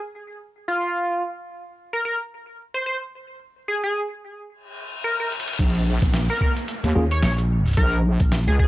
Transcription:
0.68 1.23 F4 medium
1.93 2.00 A#4 medium
2.05 2.15 A#4 medium
2.74 2.82 C5 medium
2.86 2.96 C5 medium
3.68 3.81 G#4 medium
3.84 4.00 G#4 medium
4.50 reverse cymbal medium
5.04 5.14 A#4 medium
5.20 5.27 A#4 medium
5.32 closed hi-hat medium
5.40 closed hi-hat medium
5.48 closed hi-hat medium
5.53 closed hi-hat medium
5.59 6.00 A#1 medium
5.59 kick loud
5.59 closed hi-hat medium
5.59 crash loud
5.59 downlifter medium
5.75 closed hi-hat soft
6.02 6.27 A#1 loud
6.02 kick loud
6.02 closed hi-hat medium
6.14 snare loud
6.14 closed hi-hat medium
6.29 6.37 A#4 medium
6.29 closed hi-hat soft
6.31 closed hi-hat soft
6.35 closed hi-hat soft
6.37 closed hi-hat soft
6.39 6.51 A#4 medium
6.39 kick loud
6.39 closed hi-hat soft
6.57 closed hi-hat medium
6.68 closed hi-hat medium
6.84 6.94 D#2 loud
6.84 snare medium
6.84 closed hi-hat soft
6.95 7.21 D#2 medium
6.95 7.04 A#3 medium
6.95 7.04 C#4 medium
6.95 7.04 F4 medium
6.95 7.04 G#4 loud
7.11 7.19 C#5 medium
7.11 closed hi-hat medium
7.22 7.76 A#1 loud
7.22 7.33 C#5 medium
7.22 snare loud
7.22 closed hi-hat medium
7.38 closed hi-hat soft
7.66 closed hi-hat soft
7.68 closed hi-hat soft
7.71 closed hi-hat soft
7.73 closed hi-hat soft
7.75 closed hi-hat soft
7.77 8.18 A#1 medium
7.77 7.96 A#4 medium
7.77 kick loud
7.77 closed hi-hat medium
7.93 closed hi-hat soft
8.20 8.45 A#1 medium
8.20 kick loud
8.20 closed hi-hat medium
8.32 snare loud
8.32 closed hi-hat medium
8.47 8.68 C#2 medium
8.47 8.55 G#4 medium
8.47 closed hi-hat soft
8.59 8.68 G#4 medium
8.59 kick loud

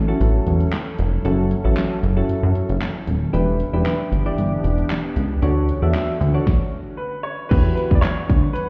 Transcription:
0.00 0.14 A1 medium
0.00 3.30 F#3 medium
0.00 3.30 C#4 medium
0.00 3.30 E4 medium
0.00 3.30 A4 medium
0.08 0.67 C#4 medium
0.08 0.67 E4 medium
0.08 0.67 F#4 medium
0.08 0.67 A4 medium
0.20 0.40 A1 loud
0.20 closed hi-hat medium
0.47 0.66 E1 medium
0.47 closed hi-hat medium
0.60 closed hi-hat medium
0.73 snare medium
0.73 clap loud
0.73 closed hi-hat medium
0.99 1.18 F1 medium
0.99 closed hi-hat medium
1.25 1.55 F#1 loud
1.25 1.47 C#4 medium
1.25 1.47 E4 medium
1.25 1.47 F#4 medium
1.25 1.47 A4 medium
1.25 closed hi-hat medium
1.51 closed hi-hat medium
1.64 1.74 A1 medium
1.64 1.94 C#4 medium
1.64 1.94 E4 medium
1.64 1.94 F#4 medium
1.64 1.94 A4 medium
1.77 snare medium
1.77 clap loud
1.77 closed hi-hat medium
2.03 2.23 F#1 medium
2.03 closed hi-hat medium
2.17 2.76 C#4 medium
2.17 2.76 E4 medium
2.17 2.76 F#4 medium
2.17 2.76 A4 loud
2.29 2.35 F#2 soft
2.29 closed hi-hat medium
2.43 2.52 F#2 loud
2.55 closed hi-hat medium
2.69 2.78 F#1 medium
2.69 closed hi-hat medium
2.82 snare medium
2.82 clap loud
2.82 closed hi-hat medium
3.07 3.27 D#1 medium
3.07 closed hi-hat medium
3.33 3.64 E1 loud
3.33 5.40 E3 medium
3.33 5.40 B3 medium
3.33 3.56 D4 medium
3.33 5.40 D4 medium
3.33 3.56 E4 medium
3.33 3.56 G4 medium
3.33 5.40 G4 medium
3.33 3.56 B4 loud
3.33 closed hi-hat medium
3.60 closed hi-hat medium
3.73 3.83 E1 loud
3.73 4.03 D4 medium
3.73 4.03 E4 medium
3.73 4.03 G4 medium
3.73 4.03 B4 medium
3.86 snare medium
3.86 clap loud
3.86 closed hi-hat medium
4.12 4.31 G1 medium
4.12 closed hi-hat medium
4.26 4.85 D4 medium
4.26 4.85 E4 medium
4.26 4.85 G4 medium
4.26 4.85 D5 medium
4.38 4.58 G1 medium
4.38 closed hi-hat medium
4.64 4.84 E1 medium
4.64 closed hi-hat medium
4.78 closed hi-hat soft
4.90 snare medium
4.90 clap loud
4.90 closed hi-hat medium
5.16 5.36 C#2 medium
5.16 closed hi-hat medium
5.42 5.72 D2 loud
5.42 6.46 D3 medium
5.42 6.46 A3 medium
5.42 6.46 C#4 medium
5.42 5.65 D4 medium
5.42 5.65 F#4 medium
5.42 6.46 F#4 medium
5.42 5.65 A4 medium
5.42 5.65 C#5 loud
5.42 closed hi-hat medium
5.69 closed hi-hat medium
5.82 5.91 E2 medium
5.82 6.12 D4 medium
5.82 6.12 F#4 medium
5.82 6.12 A4 medium
5.82 6.12 E5 medium
5.95 snare medium
5.95 clap loud
5.95 closed hi-hat medium
6.21 6.40 D2 loud
6.21 closed hi-hat medium
6.34 6.47 D4 medium
6.34 6.47 F#4 medium
6.34 6.47 A4 medium
6.34 6.47 C#5 medium
6.47 kick loud
6.47 snare medium
6.97 7.25 B4 medium
7.23 7.51 C#5 medium
7.49 7.71 E2 loud
7.49 8.69 E3 medium
7.49 8.69 G3 medium
7.49 8.69 B3 medium
7.49 8.10 E4 medium
7.49 8.11 F#4 medium
7.49 8.11 G4 medium
7.49 7.74 B4 medium
7.49 8.11 B4 medium
7.49 8.69 F#5 medium
7.49 kick loud
7.49 closed hi-hat medium
7.49 crash loud
7.75 7.80 B4 medium
7.75 closed hi-hat medium
7.91 8.00 E2 medium
7.91 kick medium
7.95 8.02 D5 medium
8.01 8.51 C#5 medium
8.01 snare medium
8.01 clap loud
8.01 clap medium
8.01 closed hi-hat medium
8.30 8.49 D2 medium
8.30 kick loud
8.30 closed hi-hat medium
8.53 8.69 B4 medium
8.53 closed hi-hat medium

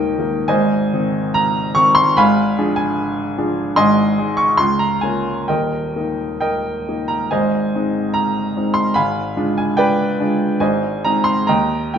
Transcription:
0.00 0.51 D#1 medium
0.00 0.52 D#2 medium
0.00 0.18 D#3 soft
0.00 0.19 A#3 soft
0.00 0.19 D#4 soft
0.00 0.45 A#4 medium
0.00 0.45 D#5 medium
0.00 0.52 G5 medium
0.18 0.46 D#3 soft
0.18 0.46 A#3 soft
0.18 0.47 D#4 soft
0.48 0.91 G#1 medium
0.48 0.92 G#2 medium
0.48 1.31 C5 medium
0.48 1.31 D#5 medium
0.48 1.35 G#5 medium
0.94 1.73 D#3 soft
0.94 1.73 C4 soft
0.94 1.73 D#4 medium
1.34 1.76 A#5 loud
1.75 2.13 D#3 medium
1.75 2.13 C4 soft
1.75 2.13 D#4 medium
1.75 1.96 C#6 loud
1.95 2.16 C6 loud
2.17 2.56 G#1 medium
2.17 2.56 G#2 medium
2.17 2.73 F5 medium
2.17 2.73 G#5 medium
2.17 2.76 B5 loud
2.58 3.33 F3 medium
2.58 3.33 D4 medium
2.58 3.33 G#4 medium
2.76 2.96 G#5 medium
3.37 3.73 F3 medium
3.37 3.74 D4 medium
3.37 3.74 G#4 medium
3.76 4.16 G#1 medium
3.76 4.16 G#2 medium
3.76 4.33 D#5 medium
3.76 4.34 G#5 medium
3.76 4.37 C6 loud
4.18 4.55 G#3 medium
4.18 4.56 D#4 soft
4.18 4.56 G#4 medium
4.37 4.58 C#6 medium
4.57 5.01 C#2 medium
4.57 4.80 C6 loud
4.79 5.02 A#5 medium
5.01 5.45 A#3 soft
5.01 5.45 C#4 soft
5.01 5.46 F4 soft
5.01 5.49 G#5 medium
5.48 5.95 D#1 soft
5.48 5.95 D#2 medium
5.48 6.38 A#4 medium
5.48 6.38 D#5 medium
5.48 6.39 G5 medium
5.96 6.83 A#3 soft
5.96 6.84 D#4 soft
6.41 7.06 A#4 medium
6.41 7.06 D#5 medium
6.41 7.09 G5 medium
6.88 7.29 A#3 soft
6.88 7.29 D#4 soft
7.08 7.31 A#5 medium
7.31 7.73 G#1 medium
7.31 7.73 G#2 medium
7.31 8.12 C5 medium
7.31 8.12 D#5 medium
7.31 8.15 G#5 medium
7.75 8.53 G#3 soft
7.75 8.54 C4 soft
7.75 8.54 D#4 soft
8.14 8.76 A#5 medium
8.57 8.94 G#3 soft
8.57 8.94 C4 soft
8.57 8.94 D#4 soft
8.74 8.96 C6 medium
8.94 9.35 G#1 medium
8.94 9.36 G#2 medium
8.94 9.53 F5 medium
8.94 9.53 G#5 medium
8.94 9.56 B5 medium
9.37 10.15 G#3 soft
9.37 10.15 D4 soft
9.37 10.15 F4 medium
9.58 9.78 G#5 medium
9.77 10.57 B4 medium
9.77 10.57 D5 medium
9.77 10.60 G5 loud
10.20 10.58 G#3 soft
10.20 10.58 D4 soft
10.20 10.58 F4 soft
10.60 11.02 G#1 medium
10.60 11.02 G#2 medium
10.60 11.01 C5 medium
10.60 11.01 D#5 medium
10.60 11.03 G#5 medium
11.04 11.45 G#3 soft
11.04 11.46 C4 soft
11.04 11.46 D#4 medium
11.04 11.26 A#5 medium
11.24 11.47 C6 medium
11.47 11.93 D#2 medium
11.47 11.91 D#5 medium
11.47 11.91 G5 medium
11.47 11.94 A#5 medium
11.94 11.98 G5 medium

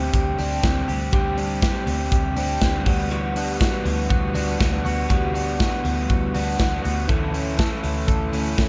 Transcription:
0.00 0.38 D3 medium
0.00 0.41 G3 medium
0.00 1.12 G3 medium
0.00 0.39 C4 medium
0.00 0.62 C4 medium
0.00 0.37 D4 soft
0.00 0.38 G4 medium
0.13 0.34 D2 medium
0.13 0.88 G4 medium
0.13 kick loud
0.13 closed hi-hat medium
0.38 0.59 D2 medium
0.38 0.63 G3 soft
0.38 0.64 C4 medium
0.38 1.36 D4 medium
0.38 0.63 G4 medium
0.38 open hi-hat medium
0.63 0.84 D2 medium
0.63 0.88 D3 medium
0.63 0.89 G3 medium
0.63 0.88 C4 medium
0.63 0.87 G4 medium
0.63 kick loud
0.63 snare medium
0.63 closed hi-hat medium
0.88 1.09 D2 medium
0.88 1.13 G3 soft
0.88 1.13 C4 soft
0.88 1.13 G4 medium
0.88 open hi-hat medium
1.12 1.72 D2 medium
1.12 1.38 D3 medium
1.12 1.38 G3 medium
1.12 1.38 C4 medium
1.12 1.37 G4 medium
1.12 kick loud
1.12 closed hi-hat medium
1.37 1.62 G3 soft
1.37 1.63 C4 soft
1.37 2.35 D4 soft
1.37 1.63 G4 medium
1.37 open hi-hat medium
1.62 2.37 D3 medium
1.62 2.39 G3 medium
1.62 2.37 C4 medium
1.62 2.36 G4 medium
1.62 kick loud
1.62 snare loud
1.62 closed hi-hat medium
1.86 2.07 D2 medium
1.86 2.60 C4 medium
1.86 open hi-hat medium
2.12 2.32 D2 medium
2.12 3.12 G4 medium
2.12 kick loud
2.12 closed hi-hat medium
2.36 2.57 D2 medium
2.36 2.61 G3 soft
2.36 2.62 C4 soft
2.36 2.91 D4 medium
2.36 2.61 G4 medium
2.36 open hi-hat medium
2.61 2.82 D2 medium
2.61 2.87 D3 medium
2.61 2.87 G3 medium
2.61 2.87 C4 medium
2.61 2.85 G4 medium
2.61 kick medium
2.61 snare medium
2.61 closed hi-hat medium
2.85 3.58 D2 medium
2.85 3.10 G3 soft
2.85 3.10 B3 soft
2.85 3.11 F#4 soft
2.85 kick medium
2.85 open hi-hat medium
3.10 3.36 D3 medium
3.10 3.36 E3 medium
3.10 3.36 G3 medium
3.10 3.36 B3 medium
3.10 3.34 F#4 medium
3.10 closed hi-hat medium
3.36 3.59 G3 soft
3.36 3.60 B3 soft
3.36 4.33 D4 medium
3.36 3.61 F#4 medium
3.36 open hi-hat medium
3.60 4.36 E3 medium
3.60 4.35 G3 medium
3.60 4.34 B3 medium
3.60 4.32 F#4 medium
3.60 kick loud
3.60 snare loud
3.60 closed hi-hat medium
3.85 4.06 D2 medium
3.85 4.58 B3 medium
3.85 open hi-hat medium
4.10 4.31 D2 medium
4.10 4.84 F#4 medium
4.10 kick loud
4.10 closed hi-hat medium
4.33 4.55 D2 medium
4.33 4.58 G3 soft
4.33 4.59 B3 medium
4.33 5.33 D4 medium
4.33 4.59 F#4 medium
4.33 open hi-hat medium
4.58 4.81 D2 medium
4.58 4.84 E3 medium
4.58 4.85 G3 medium
4.58 4.84 B3 medium
4.58 4.82 F#4 medium
4.58 kick loud
4.58 snare medium
4.58 closed hi-hat medium
4.84 5.05 D2 medium
4.84 5.09 G3 soft
4.84 5.09 B3 soft
4.84 5.09 F#4 soft
4.84 open hi-hat medium
5.09 5.69 D2 medium
5.09 5.35 D3 medium
5.09 5.35 E3 medium
5.09 5.35 G3 medium
5.09 5.35 B3 medium
5.09 5.33 F#4 medium
5.09 kick medium
5.09 closed hi-hat medium
5.35 5.59 G3 soft
5.35 5.60 B3 soft
5.35 6.33 D4 medium
5.35 5.60 F#4 soft
5.35 open hi-hat medium
5.59 6.37 E3 medium
5.59 6.34 G3 medium
5.59 6.34 B3 medium
5.59 6.33 F#4 medium
5.59 kick loud
5.59 snare loud
5.59 closed hi-hat medium
5.84 6.05 D2 medium
5.84 6.58 B3 medium
5.84 open hi-hat medium
6.09 6.30 D2 medium
6.09 6.83 F#4 medium
6.09 kick medium
6.09 closed hi-hat medium
6.34 6.55 D2 medium
6.34 6.58 G3 soft
6.34 6.58 B3 medium
6.34 7.14 D4 soft
6.34 6.59 F#4 medium
6.34 open hi-hat medium
6.57 6.80 D2 medium
6.57 6.83 E3 medium
6.57 6.84 G3 medium
6.57 6.83 B3 medium
6.57 6.81 F#4 medium
6.57 kick loud
6.57 snare medium
6.57 closed hi-hat medium
6.82 7.05 D2 medium
6.82 7.08 G3 soft
6.82 7.09 B3 soft
6.82 7.08 F#4 soft
6.82 open hi-hat medium
7.07 7.68 D2 medium
7.07 7.33 D3 medium
7.07 7.33 E3 medium
7.07 7.33 A3 medium
7.07 7.32 C#4 medium
7.07 7.31 E4 medium
7.07 7.57 A4 medium
7.07 kick loud
7.07 closed hi-hat medium
7.32 7.56 A3 soft
7.32 7.57 C#4 medium
7.32 7.58 E4 medium
7.32 open hi-hat medium
7.57 8.32 E3 medium
7.57 8.33 A3 medium
7.57 8.32 C#4 medium
7.57 8.31 E4 medium
7.57 8.06 A4 medium
7.57 kick loud
7.57 snare loud
7.57 closed hi-hat medium
7.83 8.04 D2 medium
7.83 8.57 A3 medium
7.83 open hi-hat medium
8.07 8.28 D2 medium
8.07 8.69 A4 medium
8.07 kick medium
8.07 closed hi-hat medium
8.32 8.53 D2 medium
8.32 8.58 A3 soft
8.32 8.58 C#4 medium
8.32 8.57 E4 medium
8.32 open hi-hat medium
8.57 8.69 D2 medium
8.57 8.69 E3 medium
8.57 8.69 A3 medium
8.57 8.69 C#4 medium
8.57 8.69 E4 medium
8.57 kick medium
8.57 snare medium
8.57 closed hi-hat medium

